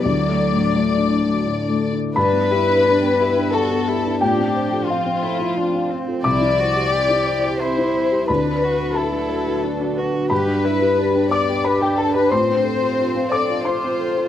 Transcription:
<<
  \new Staff \with { instrumentName = "Violin section" } { \time 3/4 \key g \major \tempo 4 = 88 d''2~ d''8 r8 | b'2 a'4 | g'4 f'4. r8 | d''2 c''4 |
b'4 a'4. r8 | b'4. d''8 b'16 g'16 a'16 b'16 | c''4. d''8 c''4 | }
  \new Staff \with { instrumentName = "Vibraphone" } { \time 3/4 \key g \major d'16 d''16 a'16 d'16 r8 d'16 fis'16 r16 d'16 a'16 r16 | g'16 r8 b'16 g'16 g''16 b'16 g''16 g'16 r8 b'16 | f'16 r8 a'16 f'16 f''16 a'16 f''16 f'16 r8 a'16 | c'16 r8 e'16 c'16 c''16 e'16 c''16 c'16 r8 e'16 |
d'16 r8 fis'16 d'16 b'16 fis'16 b'16 d'16 r8 fis'16 | g'16 r8 b'16 g'16 g''16 b'16 g''16 g'16 r8. | f'16 r8 a'16 f'16 f''16 a'16 f''16 f'16 r8 a'16 | }
  \new Staff \with { instrumentName = "Grand piano" } { \time 3/4 \key g \major << { r2. | b''2 a''4 | g''4 f''4. r8 | d'''2 c'''4 |
b''4 a''4. r8 | b''4. d'''8 b''16 g''16 a''16 b''16 | c'''4. d'''8 c'''4 | } \\ { \tuplet 3/2 { d,8 a8 a,8 a8 d'8 a8 a,8 a8 d'8 } | g,16 b16 g'16 d'8 b16 g'16 d'8 b16 g'16 d'16 | a,16 c'16 c''16 f'8 c'8 f'8 c'16 c''16 f'16 | c,16 e'16 c''16 g'8 e'16 c''16 g'8 e'16 c''16 g'16 |
d,16 d'16 b'16 fis'8 d'16 b'16 fis'8 d'16 b'16 fis'16 | g,16 d'16 b'16 g'8 d'16 b'16 g'8 d'16 b'16 g'16 | a,16 c'16 a'16 f'8 c'16 a'16 f'8 c'16 a'16 f'16 | } >> }
  \new Staff \with { instrumentName = "Ambient pad" } { \time 3/4 \key g \major << { <a d''>2. | <b d''>2. | <c' c''>2.~ | <c' c''>2. |
<d' b'>2.~ | <d' b'>2. | <c' a'>2. | } \\ { e'2. | d'2. | f2. | e'2. |
fis'2. | g'2. | f'2. | } >> }
  \new Staff \with { instrumentName = "Cello" } { \time 3/4 \key g \major fis2 r4 | d'8 e'8 d'8 e'8 fis'8 e'8 | d'4 c'8 e'8 d'8 c'8 | e'8 fis'8 g'4 e'4 |
d'8 fis'8 e'4 d'8 fis'8 | g'8 e'8 d'8 b8 d'4 | c'2 f'4 | }
>>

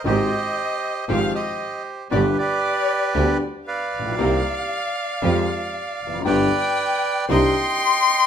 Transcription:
<<
  \new Staff \with { instrumentName = "Violin" } { \time 4/4 \key c \minor \tempo 4 = 116 ees''2 f''8 ees''4 r8 | d''8 d''2 r8 f''4~ | f''1 | g''2 c'''2 | }
  \new Staff \with { instrumentName = "Bandoneon" } { \time 4/4 \key c \minor << { ees''2 f''8 ees''4 r8 | d''8 d''2 r8 f''4~ | f''1 | g''2 c'''2 | } \\ { <g' c''>2 c''8 <g' c''>4. | <g' b'>8 <g' b'>2 r8 <b' d''>4~ | <b' d''>1 | <b' d''>2 <ees'' g''>2 | } >> }
  \new Staff \with { instrumentName = "String section" } { \time 4/4 \key c \minor <aes c' g'>8 r4. <aes f' g'>8 r4. | <b d' g'>8 r4. <b d' g'>8 r4. | <c' ees' bes'>8 r4. <aes f' g'>8 r4. | <b d' g'>8 r4. <c' d' ees'>8 r4. | }
  \new Staff \with { instrumentName = "Upright piano" } { \clef bass \time 4/4 \key c \minor <aes,, aes, ees aes c' g'>8 r4. <aes,, aes, f aes c' g'>8 r4. | <g,, g, d g b g'>8 r4. <d, d g b g'>8 r4 r32 a,,32 bes,,32 b,,32 | <c, c ees bes c' g'>8 r4. <f, f aes c' g'>8 r4 r32 e,32 f,32 fis,32 | <g,, g, d g b g'>8 r4. <c, c ees c' d' g'>8 r4. | }
  \new Staff \with { instrumentName = "Double bass" } { \clef bass \time 4/4 \key c \minor aes,,8 r4. aes,,8 r4. | g,,8 r4. d,8 r4 bes,,8 | c,8 r4. f,8 r4 f,,8 | g,,8 r4. c,8 r4. | }
>>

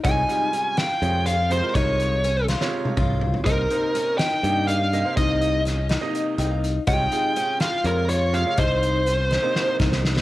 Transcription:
<<
  \new Staff \with { instrumentName = "Lead electric guitar" } { \time 7/8 \key c \phrygian \tempo 4 = 123 aes''4. g''4 f''8 c''8 | des''4. r2 | bes'4. g''4 f''4 | ees''4 r2 r8 |
g''4. f''8 bes'8 des''8 f''8 | c''2~ c''8 r4 | }
  \new Staff \with { instrumentName = "Grand piano" } { \time 7/8 \key c \phrygian r2. r8 | r2 r8 des''4 | r2. r8 | r2 r8 g''16 f''8. |
r2. r8 | r2. r8 | }
  \new Staff \with { instrumentName = "Grand piano" } { \time 7/8 \key c \phrygian <c aes f' des''>16 r16 <c g aes f'>4 r8 <c aes f' des''>8. r16 <c aes f' c''>16 <c aes f' bes'>16~ | <c aes f' bes'>4~ <c aes f' bes'>16 r8 <c aes f' des''>4~ <c aes f' des''>16 r8 | <c bes ees' c''>16 r16 <c bes ees' c''>4 r8 <c bes ees' g'>8. r16 <c bes ees' ees''>16 <c bes ees' c''>16~ | <c bes ees' c''>4~ <c bes ees' c''>16 r8 <c bes ees' ees''>4~ <c bes ees' ees''>16 r8 |
<c aes f' des''>16 r16 <c aes f' aes'>4 r8 <c aes f' des''>8. r16 <c aes f' des''>16 <c aes f' des''>16 | r4. r16 <c bes ees' c''>4~ <c bes ees' c''>16 r8 | }
  \new Staff \with { instrumentName = "Twelve-string acoustic guitar" } { \time 7/8 \key c \phrygian ees'4 des'8 f'4 f'4 | ees'4 des'8 f'4 f'4 | ees'4 des'8 ees'4 ees'4 | ees'4 des'8 ees'4 ees'4 |
ees'4 des'8 f'4 f'4 | ees'4 des'8 ees'4 ees'4 | }
  \new Staff \with { instrumentName = "Picked electric bass" } { \clef bass \time 7/8 \key c \phrygian c,8 r4. f,4. | c,2 r8 c,4 | c,8 r4. g,4. | c,2 r8 c,4 |
c,8 r4. f,4. | c,2 r8 c,4 | }
  \new DrumStaff \with { instrumentName = "Drums" } \drummode { \time 7/8 <hh bd>8 hh8 hh8 <hh sn>8 hh8 hh8 hh8 | <hh bd>8 hh8 hh8 sn16 sn8 tommh16 <bd toml>8 tomfh16 tomfh16 | <hh bd>8 hh8 hh8 <hh sn>8 hh8 hh8 hh8 | <hh bd>8 hh8 <hh sn>8 <hh sn>8 hh8 hh8 hh8 |
<hh bd>8 hh8 hh8 <hh sn>8 hh8 hh8 hh8 | <hh bd>8 hh8 hh8 sn8 sn8 <bd sn>16 sn16 sn16 sn16 | }
>>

